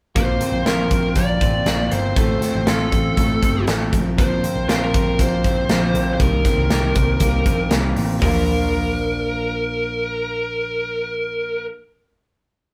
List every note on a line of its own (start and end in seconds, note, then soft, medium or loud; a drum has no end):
0.15 0.36 A#1 medium
0.15 0.41 A#2 medium
0.15 0.41 F3 medium
0.15 1.15 A#3 medium
0.15 0.41 C4 medium
0.15 0.41 F4 medium
0.15 0.39 A#4 medium
0.15 0.63 C5 medium
0.15 kick loud
0.15 closed hi-hat medium
0.40 0.65 C4 soft
0.40 0.66 F4 soft
0.40 0.66 A#4 medium
0.40 closed hi-hat medium
0.52 0.63 A#1 medium
0.65 0.86 A#1 medium
0.65 0.91 A#2 medium
0.65 0.91 F3 medium
0.65 0.91 C4 medium
0.65 0.91 F4 medium
0.65 1.18 A#4 medium
0.65 0.89 A#4 medium
0.65 snare medium
0.65 closed hi-hat medium
0.90 1.12 A#1 medium
0.90 1.16 C4 soft
0.90 1.16 F4 soft
0.90 1.16 A#4 medium
0.90 kick medium
0.90 closed hi-hat medium
1.16 1.37 A#1 loud
1.16 1.41 F3 medium
1.16 1.65 A#3 medium
1.16 1.42 C4 medium
1.16 1.41 F4 medium
1.16 1.39 A#4 medium
1.16 1.94 D5 medium
1.16 kick medium
1.16 closed hi-hat medium
1.41 1.62 A1 medium
1.41 1.65 C4 soft
1.41 1.66 F4 soft
1.41 1.66 A#4 soft
1.41 kick medium
1.41 closed hi-hat medium
1.66 1.87 A#1 medium
1.66 1.91 A#2 medium
1.66 1.92 F3 medium
1.66 2.16 A#3 medium
1.66 1.91 C4 medium
1.66 1.90 F4 medium
1.66 1.89 A#4 medium
1.66 snare loud
1.66 closed hi-hat medium
1.90 2.12 G1 medium
1.90 2.16 C4 soft
1.90 2.16 F4 soft
1.90 2.16 A#4 soft
1.90 2.15 C5 medium
1.90 closed hi-hat medium
2.16 2.37 A1 loud
2.16 2.42 A3 medium
2.16 2.42 C4 medium
2.16 2.42 F4 medium
2.16 2.40 A4 medium
2.16 2.68 C5 medium
2.16 kick loud
2.16 closed hi-hat medium
2.42 2.66 C4 soft
2.42 2.67 F4 soft
2.42 2.67 A4 soft
2.42 snare soft
2.42 closed hi-hat medium
2.55 2.65 A1 medium
2.66 2.88 A1 medium
2.66 2.92 A3 medium
2.66 2.92 C4 medium
2.66 2.91 F4 medium
2.66 3.64 A4 medium
2.66 2.90 A4 medium
2.66 snare loud
2.66 closed hi-hat medium
2.91 3.13 A1 medium
2.91 3.16 C4 soft
2.91 3.17 F4 soft
2.91 3.17 A4 soft
2.91 kick medium
2.91 closed hi-hat medium
3.16 3.38 A1 medium
3.16 3.42 A3 soft
3.16 3.42 C4 medium
3.16 3.42 F4 medium
3.16 3.40 A4 medium
3.16 kick medium
3.16 closed hi-hat medium
3.42 3.63 G1 medium
3.42 3.67 C4 soft
3.42 3.67 F4 soft
3.42 3.67 A4 medium
3.42 kick medium
3.42 closed hi-hat medium
3.67 3.88 A1 medium
3.67 3.92 A3 medium
3.67 3.93 C4 medium
3.67 3.93 F4 medium
3.67 3.93 A4 medium
3.67 snare loud
3.67 closed hi-hat medium
3.92 4.34 A#1 loud
3.92 4.17 F3 medium
3.92 4.18 C4 soft
3.92 4.18 F4 soft
3.92 4.18 A#4 medium
3.92 kick medium
3.92 closed hi-hat medium
4.18 4.43 A#2 medium
4.18 4.43 F3 medium
4.18 4.44 C4 medium
4.18 4.43 F4 medium
4.18 4.42 A#4 medium
4.18 4.69 C5 loud
4.18 kick loud
4.18 closed hi-hat medium
4.43 4.68 C4 soft
4.43 4.68 F4 soft
4.43 4.68 A#4 soft
4.43 closed hi-hat medium
4.55 4.66 A#1 medium
4.68 4.89 A#1 medium
4.68 4.94 A#2 medium
4.68 4.94 F3 medium
4.68 4.94 C4 medium
4.68 4.93 F4 medium
4.68 4.75 A#4 medium
4.68 4.91 A#4 medium
4.68 snare loud
4.68 closed hi-hat medium
4.75 4.83 C5 medium
4.84 5.17 A#4 medium
4.93 5.15 A#1 medium
4.93 5.18 C4 soft
4.93 5.19 F4 medium
4.93 5.18 A#4 medium
4.93 kick medium
4.93 closed hi-hat medium
5.18 5.40 A#1 loud
5.18 5.44 F3 medium
5.18 5.69 A#3 medium
5.18 5.44 C4 medium
5.18 5.44 F4 medium
5.18 5.43 A#4 medium
5.18 6.12 C5 medium
5.18 kick medium
5.18 closed hi-hat medium
5.44 5.65 A#1 medium
5.44 5.69 C4 soft
5.44 5.70 F4 soft
5.44 5.69 A#4 soft
5.44 kick medium
5.44 closed hi-hat medium
5.69 5.90 A#1 medium
5.69 5.95 A#2 medium
5.69 5.95 F3 medium
5.69 6.47 A#3 medium
5.69 5.95 C4 medium
5.69 5.94 F4 medium
5.69 5.93 A#4 medium
5.69 snare loud
5.69 closed hi-hat medium
5.94 6.15 A#1 medium
5.94 6.20 C4 soft
5.94 6.20 F4 soft
5.94 6.19 A#4 soft
5.94 closed hi-hat medium
6.13 6.20 C5 soft
6.19 6.40 C2 loud
6.19 6.45 C3 medium
6.19 8.19 D#3 medium
6.19 6.45 G3 medium
6.19 6.45 A#3 medium
6.19 6.45 D#4 medium
6.19 6.43 A#4 medium
6.19 7.68 A#4 medium
6.19 kick loud
6.19 closed hi-hat medium
6.44 6.70 A#3 soft
6.44 6.94 C4 medium
6.44 6.70 D#4 soft
6.44 6.70 A#4 soft
6.44 kick medium
6.44 snare soft
6.44 closed hi-hat medium
6.57 6.67 C2 medium
6.70 6.91 C2 loud
6.70 6.95 C3 medium
6.70 6.96 G3 medium
6.70 6.96 A#3 medium
6.70 6.95 D#4 medium
6.70 8.24 G4 medium
6.70 6.94 A#4 medium
6.70 snare medium
6.70 closed hi-hat medium
6.95 7.16 C2 medium
6.95 7.19 A#3 soft
6.95 7.45 C4 medium
6.95 7.20 D#4 medium
6.95 7.21 A#4 medium
6.95 kick medium
6.95 closed hi-hat medium
7.20 7.41 C2 medium
7.20 7.46 G3 medium
7.20 7.46 A#3 medium
7.20 7.46 D#4 medium
7.20 7.45 A#4 medium
7.20 kick medium
7.20 closed hi-hat medium
7.46 7.67 A#1 medium
7.46 7.71 A#3 soft
7.46 7.96 C4 soft
7.46 7.72 D#4 soft
7.46 7.71 A#4 soft
7.46 kick medium
7.46 closed hi-hat medium
7.71 7.92 C2 medium
7.71 7.96 C3 medium
7.71 7.97 G3 medium
7.71 7.97 A#3 medium
7.71 7.96 D#4 medium
7.71 7.95 A#4 medium
7.71 snare loud
7.71 closed hi-hat medium
7.96 8.17 A1 medium
7.96 8.23 A#3 soft
7.96 8.23 C4 medium
7.96 8.22 D#4 soft
7.96 8.22 A#4 soft
7.96 open hi-hat medium
8.16 11.66 A#2 medium
8.21 11.66 A#1 medium
8.21 11.73 F3 medium
8.21 11.71 A#3 medium
8.21 11.73 D4 medium
8.21 11.75 F4 medium
8.21 11.66 A#4 medium
8.21 kick medium
8.21 floor tom medium
8.21 open hi-hat medium
8.28 11.78 A#3 medium
8.33 11.83 D4 medium
8.37 11.87 A#4 medium